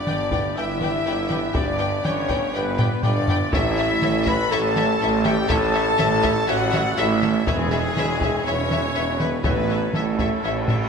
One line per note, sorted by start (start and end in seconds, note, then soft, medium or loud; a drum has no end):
0.00 3.48 B3 medium
0.00 0.54 D4 loud
0.00 3.48 G4 medium
0.00 3.48 B4 medium
0.00 0.54 D5 loud
0.00 0.57 D5 loud
0.00 3.48 G5 medium
0.06 0.50 G1 medium
0.06 0.51 G1 medium
0.06 0.50 G2 medium
0.06 0.15 B4 medium
0.06 0.14 D5 medium
0.06 0.16 G5 medium
0.06 taiko mid medium
0.31 0.39 B4 medium
0.31 0.39 D5 medium
0.31 0.41 G5 medium
0.31 taiko medium
0.55 1.00 G1 medium
0.55 1.00 G2 medium
0.55 1.55 E4 loud
0.55 0.64 B4 medium
0.55 0.63 D5 medium
0.55 1.55 E5 loud
0.55 1.23 E5 loud
0.55 1.54 E5 loud
0.55 0.66 G5 medium
0.80 0.88 B4 medium
0.80 0.89 D5 medium
0.80 0.91 G5 medium
0.80 taiko mid medium
1.05 1.49 G1 medium
1.05 1.49 G2 medium
1.05 1.14 B4 medium
1.05 1.14 D5 medium
1.05 1.15 G5 medium
1.30 1.39 B4 medium
1.30 1.39 D5 medium
1.30 1.38 G5 medium
1.30 taiko mid medium
1.54 1.99 G1 loud
1.54 1.99 G2 medium
1.54 2.04 D4 loud
1.54 1.64 B4 medium
1.54 2.05 D5 loud
1.54 2.03 D5 loud
1.54 1.63 D5 medium
1.54 2.05 D5 loud
1.54 1.62 G5 medium
1.54 taiko loud
1.78 1.88 B4 medium
1.78 1.88 D5 medium
1.78 1.86 G5 medium
2.04 2.48 G1 medium
2.04 2.48 G2 medium
2.04 2.52 C#4 loud
2.04 2.13 B4 medium
2.04 2.55 C#5 medium
2.04 2.54 C#5 loud
2.04 2.13 D5 medium
2.04 2.12 G5 medium
2.04 taiko mid medium
2.29 2.38 B4 medium
2.29 2.38 D5 medium
2.29 2.37 G5 medium
2.29 taiko medium
2.52 2.90 G1 loud
2.52 2.97 G1 loud
2.52 2.97 G2 loud
2.52 3.02 B3 loud
2.52 3.05 B4 loud
2.52 3.02 B4 loud
2.52 2.62 B4 medium
2.52 3.04 B4 loud
2.52 2.62 D5 medium
2.52 2.63 G5 medium
2.78 2.86 B4 medium
2.78 2.87 D5 medium
2.78 2.87 G5 medium
2.78 taiko low-mid loud
3.02 3.47 G1 medium
3.02 3.47 G1 loud
3.02 3.47 G2 loud
3.02 3.38 D4 loud
3.02 3.12 B4 medium
3.02 3.51 D5 loud
3.02 3.53 D5 loud
3.02 3.12 D5 medium
3.02 3.53 D5 loud
3.02 3.12 G5 medium
3.02 taiko low-mid loud
3.28 3.36 B4 medium
3.28 3.36 D5 medium
3.28 3.37 G5 medium
3.28 taiko low loud
3.52 3.96 A1 loud
3.52 3.96 A2 loud
3.52 9.43 E4 loud
3.52 4.26 E4 loud
3.52 7.47 A4 loud
3.52 3.60 A4 medium
3.52 9.42 C#5 loud
3.52 3.60 C#5 loud
3.52 4.27 E5 loud
3.52 9.42 E5 loud
3.52 4.27 E5 loud
3.52 4.26 E5 loud
3.52 3.62 E5 medium
3.52 taiko loud
3.77 3.85 A4 medium
3.77 3.85 C#5 medium
3.77 3.85 E5 medium
4.02 4.46 A1 loud
4.02 4.45 A2 loud
4.02 4.10 A4 medium
4.02 4.10 C#5 medium
4.02 4.10 E5 medium
4.02 taiko mid medium
4.26 4.35 A4 medium
4.26 4.51 B4 loud
4.26 4.35 C#5 medium
4.26 4.34 E5 medium
4.26 4.52 B5 loud
4.26 taiko medium
4.50 4.95 A1 loud
4.50 4.95 A2 loud
4.50 5.25 A4 loud
4.50 4.59 A4 medium
4.50 4.59 C#5 loud
4.50 4.60 E5 loud
4.50 5.27 A5 loud
4.50 5.25 A5 loud
4.50 5.26 A5 loud
4.76 4.84 A4 medium
4.76 4.84 C#5 medium
4.76 4.85 E5 medium
4.76 taiko mid medium
5.00 5.44 A1 loud
5.00 5.44 A2 loud
5.00 5.09 A4 loud
5.00 5.09 C#5 medium
5.00 5.10 E5 medium
5.25 5.50 G4 loud
5.25 5.34 A4 loud
5.25 5.34 C#5 loud
5.25 5.33 E5 medium
5.25 5.49 G5 loud
5.25 5.50 G5 loud
5.25 taiko mid medium
5.49 5.93 A1 loud
5.49 5.94 A1 loud
5.49 5.93 A2 loud
5.49 6.48 A4 loud
5.49 5.58 A4 loud
5.49 5.58 C#5 loud
5.49 5.57 E5 loud
5.49 6.47 A5 loud
5.49 6.19 A5 loud
5.49 6.47 A5 loud
5.49 taiko loud
5.74 5.83 A4 loud
5.74 5.83 C#5 loud
5.74 5.82 E5 medium
5.98 6.43 A1 loud
5.98 6.43 A2 loud
5.98 6.07 A4 loud
5.98 6.07 C#5 medium
5.98 6.06 E5 loud
5.98 taiko mid medium
6.23 6.32 A4 medium
6.23 6.32 C#5 medium
6.23 6.31 E5 loud
6.23 taiko medium
6.48 6.92 A1 loud
6.48 6.92 A2 loud
6.48 6.96 F#4 loud
6.48 6.56 A4 loud
6.48 6.56 C#5 loud
6.48 6.56 E5 loud
6.48 7.00 F#5 loud
6.48 6.98 F#5 loud
6.73 6.81 A4 medium
6.73 6.81 C#5 medium
6.73 6.81 E5 loud
6.73 taiko mid medium
6.97 7.42 A1 loud
6.97 7.42 A2 loud
6.97 7.47 E4 loud
6.97 7.06 A4 loud
6.97 7.05 C#5 loud
6.97 7.49 E5 loud
6.97 7.06 E5 loud
6.97 7.33 E5 loud
6.97 7.48 E5 loud
7.22 7.31 A4 medium
7.22 7.31 C#5 loud
7.22 7.30 E5 medium
7.22 taiko mid medium
7.47 7.91 E1 loud
7.47 7.91 E2 loud
7.47 8.18 E2 loud
7.47 8.44 G#3 loud
7.47 8.44 G#4 loud
7.47 8.45 G#4 loud
7.47 9.44 B4 loud
7.47 7.55 B4 loud
7.47 7.55 C#5 loud
7.47 7.55 E5 loud
7.47 taiko loud
7.71 7.80 B4 medium
7.71 7.80 C#5 medium
7.71 7.79 E5 medium
7.96 8.40 E1 loud
7.96 8.41 E1 loud
7.96 8.40 E2 loud
7.96 8.05 B4 medium
7.96 8.05 C#5 medium
7.96 8.06 E5 loud
7.96 taiko mid medium
8.21 8.29 B4 medium
8.21 8.29 C#5 medium
8.21 8.31 E5 medium
8.21 taiko loud
8.46 8.90 E1 loud
8.46 8.90 E2 loud
8.46 9.20 C#4 loud
8.46 8.54 B4 medium
8.46 9.18 C#5 loud
8.46 8.54 C#5 medium
8.46 9.19 C#5 loud
8.46 9.20 C#5 loud
8.46 8.55 E5 medium
8.71 8.79 B4 medium
8.71 8.79 C#5 medium
8.71 8.79 E5 medium
8.71 taiko mid medium
8.95 9.39 E1 loud
8.95 9.39 E2 loud
8.95 9.03 B4 medium
8.95 9.03 C#5 medium
8.95 9.04 E5 medium
9.19 9.42 B3 loud
9.19 9.43 B4 medium
9.19 9.27 B4 medium
9.19 9.44 B4 loud
9.19 9.45 B4 loud
9.19 9.27 C#5 medium
9.19 9.28 E5 medium
9.19 taiko mid medium
9.43 9.88 A1 medium
9.43 9.88 A1 loud
9.43 10.14 A2 loud
9.43 9.88 A2 loud
9.43 9.92 B3 loud
9.43 10.89 E4 medium
9.43 9.52 A4 medium
9.43 10.89 A4 medium
9.43 9.95 B4 loud
9.43 9.93 B4 loud
9.43 9.94 B4 loud
9.43 9.52 C#5 medium
9.43 10.89 C#5 medium
9.43 9.52 E5 medium
9.43 10.89 E5 medium
9.43 taiko loud
9.68 9.77 A4 medium
9.68 9.76 C#5 medium
9.68 9.79 E5 medium
9.92 10.30 A1 medium
9.92 10.38 A1 medium
9.92 10.38 A2 medium
9.92 10.89 A3 medium
9.92 10.02 A4 medium
9.92 10.89 A4 medium
9.92 10.01 C#5 medium
9.92 10.03 E5 medium
9.92 taiko mid medium
10.18 10.26 A4 medium
10.18 10.26 C#5 medium
10.18 10.28 E5 medium
10.18 taiko loud
10.43 10.87 A1 medium
10.43 10.87 A2 medium
10.43 10.51 A4 medium
10.43 10.51 C#5 medium
10.43 10.53 E5 medium
10.68 10.76 A4 medium
10.68 10.76 C#5 medium
10.68 10.77 E5 medium
10.68 taiko low-mid loud